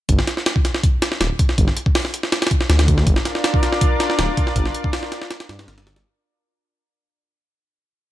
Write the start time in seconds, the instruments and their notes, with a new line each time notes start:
0.09 detuned saw bass G1, kick, closed hi-hat
0.19 snare
0.27 snare, closed hi-hat
0.37 snare
0.46 snare, closed hi-hat
0.56 kick
0.65 snare, closed hi-hat
0.75 snare
0.83 kick, closed hi-hat
1.02 snare, closed hi-hat
1.12 snare
1.21 detuned saw bass D1, snare, closed hi-hat
1.39 kick, closed hi-hat
1.49 snare
1.58 detuned saw bass G1, kick, closed hi-hat
1.68 snare
1.77 closed hi-hat
1.86 kick
1.95 snare, open hi-hat
2.05 snare
2.14 closed hi-hat
2.23 snare
2.32 snare, closed hi-hat
2.42 snare, closed hi-hat
2.47 snare, closed hi-hat
2.51 kick, closed hi-hat
2.61 snare
2.70 detuned saw bass D2, snare, closed hi-hat
2.79 snare, closed hi-hat
2.88 kick, closed hi-hat
2.98 snare
3.07 detuned saw bass G1, analog synth pad D4 F4 A#4 D5, kick, closed hi-hat
3.16 snare
3.25 snare, closed hi-hat
3.35 snare
3.44 snare, closed hi-hat
3.54 kick
3.63 snare, closed hi-hat
3.72 snare
3.81 kick, closed hi-hat
4.00 snare, closed hi-hat
4.10 snare
4.19 detuned saw bass D1, snare, closed hi-hat
4.37 kick, closed hi-hat
4.47 snare
4.56 detuned saw bass G1, kick, closed hi-hat
4.66 snare
4.75 closed hi-hat
4.84 kick
4.93 snare, open hi-hat
5.03 snare
5.12 snare, closed hi-hat
5.22 snare
5.31 snare, closed hi-hat
5.40 snare, closed hi-hat
5.49 detuned saw bass G2, snare, closed hi-hat
5.59 snare, closed hi-hat
5.68 detuned saw bass G1, snare, closed hi-hat
5.78 snare, closed hi-hat
5.87 snare, closed hi-hat
5.96 snare, closed hi-hat